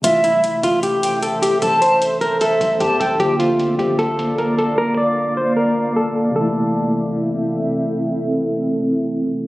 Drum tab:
HH |xxxxxxxx|xxxxxxxx|xxxxxxxx|--------|

HH |--------|--------|